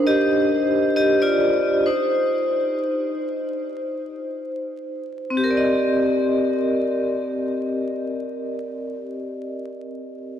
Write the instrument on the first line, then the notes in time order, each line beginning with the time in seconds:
vibraphone
Already playing: D4 D#4 A#4 C5
0.07 G4 D#5
0.96 G4 D#5
1.22 F4 D5
1.86 D#4 C5
5.30 C4
5.37 G4
5.44 A#4
5.51 D5
5.57 D#5